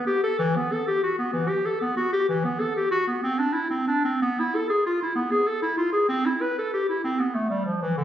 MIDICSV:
0, 0, Header, 1, 2, 480
1, 0, Start_track
1, 0, Key_signature, 1, "minor"
1, 0, Tempo, 627615
1, 313, Time_signature, 12, 3, 24, 8
1, 2230, Tempo, 645856
1, 3196, Key_signature, 0, "minor"
1, 3670, Tempo, 621762
1, 6131, End_track
2, 0, Start_track
2, 0, Title_t, "Clarinet"
2, 0, Program_c, 0, 71
2, 52, Note_on_c, 0, 67, 70
2, 176, Note_off_c, 0, 67, 0
2, 180, Note_on_c, 0, 69, 75
2, 292, Note_off_c, 0, 69, 0
2, 297, Note_on_c, 0, 52, 89
2, 431, Note_on_c, 0, 59, 76
2, 442, Note_off_c, 0, 52, 0
2, 554, Note_on_c, 0, 69, 78
2, 565, Note_off_c, 0, 59, 0
2, 665, Note_off_c, 0, 69, 0
2, 669, Note_on_c, 0, 67, 76
2, 784, Note_off_c, 0, 67, 0
2, 789, Note_on_c, 0, 66, 69
2, 902, Note_off_c, 0, 66, 0
2, 907, Note_on_c, 0, 59, 73
2, 1013, Note_off_c, 0, 59, 0
2, 1018, Note_on_c, 0, 52, 75
2, 1134, Note_on_c, 0, 67, 73
2, 1146, Note_off_c, 0, 52, 0
2, 1269, Note_on_c, 0, 69, 74
2, 1281, Note_off_c, 0, 67, 0
2, 1382, Note_off_c, 0, 69, 0
2, 1387, Note_on_c, 0, 59, 72
2, 1497, Note_off_c, 0, 59, 0
2, 1502, Note_on_c, 0, 66, 70
2, 1623, Note_off_c, 0, 66, 0
2, 1628, Note_on_c, 0, 67, 75
2, 1743, Note_off_c, 0, 67, 0
2, 1748, Note_on_c, 0, 52, 78
2, 1868, Note_on_c, 0, 59, 70
2, 1879, Note_off_c, 0, 52, 0
2, 1989, Note_on_c, 0, 69, 69
2, 2000, Note_off_c, 0, 59, 0
2, 2109, Note_off_c, 0, 69, 0
2, 2112, Note_on_c, 0, 67, 74
2, 2220, Note_off_c, 0, 67, 0
2, 2225, Note_on_c, 0, 66, 82
2, 2341, Note_off_c, 0, 66, 0
2, 2347, Note_on_c, 0, 59, 68
2, 2462, Note_off_c, 0, 59, 0
2, 2467, Note_on_c, 0, 60, 79
2, 2580, Note_on_c, 0, 62, 69
2, 2591, Note_off_c, 0, 60, 0
2, 2691, Note_on_c, 0, 64, 76
2, 2702, Note_off_c, 0, 62, 0
2, 2812, Note_off_c, 0, 64, 0
2, 2816, Note_on_c, 0, 60, 70
2, 2938, Note_off_c, 0, 60, 0
2, 2943, Note_on_c, 0, 62, 74
2, 3067, Note_off_c, 0, 62, 0
2, 3070, Note_on_c, 0, 60, 73
2, 3193, Note_off_c, 0, 60, 0
2, 3197, Note_on_c, 0, 59, 81
2, 3331, Note_on_c, 0, 64, 73
2, 3342, Note_off_c, 0, 59, 0
2, 3447, Note_on_c, 0, 69, 80
2, 3458, Note_off_c, 0, 64, 0
2, 3550, Note_off_c, 0, 69, 0
2, 3554, Note_on_c, 0, 68, 73
2, 3667, Note_off_c, 0, 68, 0
2, 3678, Note_on_c, 0, 65, 75
2, 3790, Note_off_c, 0, 65, 0
2, 3803, Note_on_c, 0, 64, 69
2, 3897, Note_off_c, 0, 64, 0
2, 3902, Note_on_c, 0, 59, 78
2, 4023, Note_on_c, 0, 68, 75
2, 4034, Note_off_c, 0, 59, 0
2, 4143, Note_on_c, 0, 69, 74
2, 4155, Note_off_c, 0, 68, 0
2, 4260, Note_off_c, 0, 69, 0
2, 4264, Note_on_c, 0, 64, 76
2, 4379, Note_off_c, 0, 64, 0
2, 4383, Note_on_c, 0, 65, 73
2, 4494, Note_off_c, 0, 65, 0
2, 4499, Note_on_c, 0, 68, 76
2, 4619, Note_off_c, 0, 68, 0
2, 4623, Note_on_c, 0, 60, 91
2, 4755, Note_on_c, 0, 64, 75
2, 4767, Note_off_c, 0, 60, 0
2, 4876, Note_on_c, 0, 71, 73
2, 4888, Note_off_c, 0, 64, 0
2, 4993, Note_off_c, 0, 71, 0
2, 5006, Note_on_c, 0, 69, 74
2, 5117, Note_off_c, 0, 69, 0
2, 5124, Note_on_c, 0, 67, 76
2, 5236, Note_off_c, 0, 67, 0
2, 5244, Note_on_c, 0, 64, 63
2, 5356, Note_off_c, 0, 64, 0
2, 5361, Note_on_c, 0, 60, 78
2, 5477, Note_on_c, 0, 59, 68
2, 5488, Note_off_c, 0, 60, 0
2, 5597, Note_on_c, 0, 57, 67
2, 5608, Note_off_c, 0, 59, 0
2, 5709, Note_off_c, 0, 57, 0
2, 5714, Note_on_c, 0, 55, 65
2, 5829, Note_off_c, 0, 55, 0
2, 5834, Note_on_c, 0, 53, 61
2, 5948, Note_off_c, 0, 53, 0
2, 5962, Note_on_c, 0, 52, 68
2, 6072, Note_off_c, 0, 52, 0
2, 6078, Note_on_c, 0, 50, 82
2, 6131, Note_off_c, 0, 50, 0
2, 6131, End_track
0, 0, End_of_file